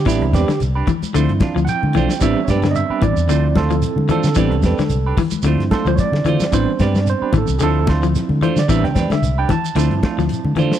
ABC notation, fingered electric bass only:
X:1
M:4/4
L:1/16
Q:"Swing 16ths" 1/4=111
K:Am
V:1 name="Fingered electric bass" clef=bass
A,,, C,, E,, z C,,2 z2 D,, G,, z D,, z D, B,,, z | A,,, z G,,3 z A,,, E,, D,,4- D,, D, z D, | A,,, C,, E,, z C,,2 z2 D,, G,, z D,, z D, D, z | A,,, z G,,3 z A,,, C,, D,,4- D,, D, z D, |
A,,, C,, E,, z C,,2 z2 D,, G,, z D,, z D, D, z |]